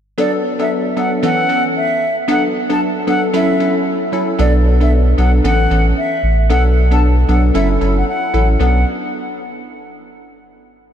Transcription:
0.18 F#3 B3 D4 A4 D5
0.59 F#3 B3 D4 A4 E5
0.97 F#3 B3 D4 A4 F#5
1.23 E3 B3 C#4 A4 F#5
1.49 E3 B3 C#4 A4
1.77 E5
2.28 F#3 B3 D4 A4 F#5
2.69 F#3 B3 D4 A4 A5
3.07 F#3 B3 D4 A4 F#5
3.33 F#3 C#4 E4 A4 E5
3.60 F#3 C#4 E4 A4
4.12 F#3 C#4 E4 A4
4.39 B1 F#3 B3 D4 A4 D5
4.80 F#3 B3 D4 A4 E5
5.18 B1 F#3 B3 D4 A4 F#5
5.44 A1 E3 B3 C#4 A4 F#5
5.71 A1 E3 B3 C#4 A4
5.98 E5
6.23 A1
6.50 B1 F#3 B3 D4 A4 F#5
6.91 F#3 B3 D4 A4 A5
7.28 B1 F#3 B3 D4 A4 F#5
7.54 F#1 F#3 C#4 E4 A4 E5
7.81 F#1 F#3 C#4 E4 A4
7.97 F#5
8.08 F#5
8.34 A1 F#3 C#4 E4 A4
8.60 B1 F#3 B3 D4 A4 F#5

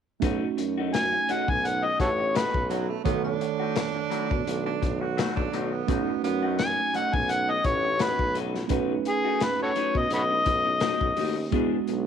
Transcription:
0.20 B1 F#3 A3 C#4 D#4 F#4, kick, closed hi-hat
0.24 F#4
0.58 F#2, muted clean electric guitar stroke, closed hi-hat
0.78 A3 D#4 F#4
0.93 G#5, muted clean electric guitar stroke, snare, closed hi-hat
1.12 muted clean electric guitar stroke
1.29 B1 F#3 A3 D#4 F#4 F#5, closed hi-hat
1.48 B1 G#5, muted clean electric guitar stroke, kick
1.65 F#5, closed hi-hat
1.84 D#5, muted clean electric guitar stroke
2.00 A1 F#4 A4 C#5, muted clean electric guitar stroke, kick, closed hi-hat
2.18 muted clean electric guitar stroke
2.35 F#3 A3 D#4 F#4 B4, snare, closed hi-hat
2.54 B1, kick
2.70 F#3 A3 D#4 F#4, closed hi-hat
2.89 A3, muted clean electric guitar stroke
3.04 B1 D#3 F#3 A3 B3 D#4 F#4 A4 C#5, kick, closed hi-hat
3.24 D4
3.41 muted clean electric guitar stroke, closed hi-hat
3.60 A3 D#4 F#4
3.76 snare, closed hi-hat
3.95 muted clean electric guitar stroke
4.10 F#3 A3 D#4 F#4, closed hi-hat
4.30 B2, muted clean electric guitar stroke, kick
4.47 B1, closed hi-hat
4.66 D4, muted clean electric guitar stroke
4.82 B1, muted clean electric guitar stroke, kick, closed hi-hat
5.01 F#4, muted clean electric guitar stroke
5.17 F#3 A3 D#4 F#4, snare, closed hi-hat
5.36 B1 D4, kick
5.52 B1 F#3 A3 D#4 F#4, closed hi-hat
5.72 B3, muted clean electric guitar stroke
5.87 B1 F#3 A3 C#4 D#4 F#4, kick, closed hi-hat
6.23 F#2 B3, muted clean electric guitar stroke, closed hi-hat
6.43 A3 D#4 F#4
6.59 G#5, muted clean electric guitar stroke, snare, closed hi-hat
6.78 muted clean electric guitar stroke
6.94 B1 F#3 A3 D#4 F#4 F#5, closed hi-hat
7.14 B1 G#5, muted clean electric guitar stroke, kick
7.29 F#5, closed hi-hat
7.49 D#5, muted clean electric guitar stroke
7.64 A1 C#5, muted clean electric guitar stroke, kick, closed hi-hat
7.84 muted clean electric guitar stroke
7.99 F#3 A3 D#4 F#4 B4, snare, closed hi-hat
8.19 B1, kick
8.34 F#3 A3 D#4 F#4, closed hi-hat
8.54 muted clean electric guitar stroke, snare
8.68 B1 F#3 A3 C#4 D#4 F#4 B4, kick, closed hi-hat
9.05 G#4, muted clean electric guitar stroke, closed hi-hat
9.25 A3 D#4 F#4
9.40 B4, muted clean electric guitar stroke, snare, closed hi-hat
9.60 F#4 A4 C#5, muted clean electric guitar stroke
9.76 F#3 A3 D#4 F#4, closed hi-hat
9.95 B2 D#5, muted clean electric guitar stroke, kick
10.10 B1 F#4 B4 D#5, closed hi-hat
10.30 muted clean electric guitar stroke
10.46 B1, muted clean electric guitar stroke, kick, closed hi-hat
10.66 muted clean electric guitar stroke
10.80 F#3 A3 D#4 F#4, snare, closed hi-hat
11.01 B1, kick
11.16 D#2 F#3 A3 D#4 F#4, open hi-hat
11.37 muted clean electric guitar stroke
11.51 E2 E3 G#3 B3 D4 F#4 G#4, kick, closed hi-hat
11.88 B1, muted clean electric guitar stroke, closed hi-hat

